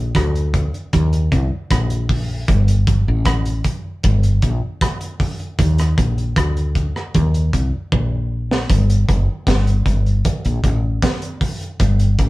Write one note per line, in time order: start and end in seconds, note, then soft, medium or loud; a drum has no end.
0.00 0.12 A#1 medium
0.15 0.70 D2 medium
0.15 kick loud
0.15 cross-stick medium
0.15 closed hi-hat medium
0.35 closed hi-hat soft
0.54 kick medium
0.54 closed hi-hat medium
0.74 closed hi-hat soft
0.93 1.28 D#2 loud
0.93 kick loud
0.93 closed hi-hat medium
1.13 closed hi-hat medium
1.32 1.50 C2 loud
1.32 kick medium
1.32 closed hi-hat medium
1.70 2.44 A#1 medium
1.70 kick loud
1.70 cross-stick loud
1.70 closed hi-hat medium
1.90 closed hi-hat medium
2.09 kick medium
2.09 open hi-hat medium
2.48 3.03 G1 loud
2.48 kick loud
2.48 closed hi-hat medium
2.68 closed hi-hat medium
2.87 kick loud
2.87 closed hi-hat medium
3.08 3.61 A1 medium
3.25 kick loud
3.25 cross-stick loud
3.25 closed hi-hat medium
3.45 closed hi-hat soft
3.64 kick medium
3.64 closed hi-hat medium
4.03 4.39 G1 loud
4.03 kick loud
4.03 closed hi-hat medium
4.23 closed hi-hat medium
4.42 4.61 A#1 loud
4.42 kick medium
4.42 closed hi-hat medium
4.81 kick loud
4.81 cross-stick loud
4.81 closed hi-hat medium
5.01 closed hi-hat medium
5.20 kick medium
5.20 open hi-hat medium
5.40 closed hi-hat soft
5.59 5.94 D#2 medium
5.59 kick loud
5.59 closed hi-hat medium
5.78 cross-stick medium
5.78 closed hi-hat medium
5.98 6.33 A#1 medium
5.98 kick loud
5.98 closed hi-hat medium
6.18 closed hi-hat soft
6.36 6.91 D2 medium
6.36 kick loud
6.36 cross-stick loud
6.36 closed hi-hat medium
6.57 closed hi-hat soft
6.75 kick medium
6.75 closed hi-hat medium
6.96 cross-stick medium
7.14 7.50 D#2 loud
7.14 kick loud
7.14 closed hi-hat medium
7.34 closed hi-hat soft
7.53 7.72 C2 medium
7.53 kick medium
7.53 closed hi-hat medium
7.92 8.66 A#1 medium
7.92 kick loud
8.51 snare medium
8.70 9.05 G1 loud
8.70 kick loud
8.70 closed hi-hat medium
8.90 closed hi-hat medium
9.09 9.27 F#1 medium
9.09 kick loud
9.09 closed hi-hat medium
9.47 9.82 G1 medium
9.47 kick loud
9.47 snare loud
9.47 closed hi-hat medium
9.67 closed hi-hat soft
9.86 10.21 G1 medium
9.86 kick medium
9.86 closed hi-hat medium
10.06 closed hi-hat soft
10.25 kick loud
10.25 closed hi-hat medium
10.45 10.62 A#1 medium
10.45 closed hi-hat soft
10.64 10.99 A1 medium
10.64 kick medium
10.64 closed hi-hat medium
11.02 kick loud
11.02 snare loud
11.02 closed hi-hat medium
11.22 closed hi-hat medium
11.41 kick medium
11.41 open hi-hat medium
11.61 closed hi-hat soft
11.80 12.15 G1 loud
11.80 kick loud
11.80 closed hi-hat medium
11.99 closed hi-hat medium
12.19 12.29 A1 medium
12.19 kick medium
12.19 closed hi-hat medium